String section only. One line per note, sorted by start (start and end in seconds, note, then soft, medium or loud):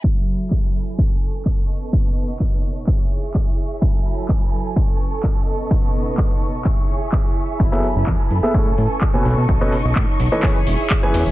0.04 0.97 F#3 medium
0.04 2.85 A4 medium
0.04 0.97 E5 medium
0.04 1.68 G#5 medium
0.04 0.97 B5 medium
0.98 2.86 C#6 medium
1.69 2.86 B3 medium
1.69 2.86 D#5 medium
2.87 3.81 G#4 medium
2.87 4.74 E5 medium
2.87 3.81 C#6 medium
3.82 4.75 F#3 medium
3.82 6.63 A4 medium
3.82 5.46 G#5 medium
3.82 4.75 B5 medium
4.76 5.46 C#6 medium
5.47 6.64 B3 medium
5.47 6.64 D#5 medium
5.47 7.58 C#6 medium
6.65 7.59 G#4 medium
6.65 8.53 E5 medium
7.60 10.41 A4 medium
7.60 8.53 G#5 medium
7.60 8.53 B5 medium
8.54 9.25 G#5 medium
8.54 11.31 C#6 medium
9.25 10.42 D#5 medium
10.43 11.31 G#4 medium
10.43 11.31 E5 medium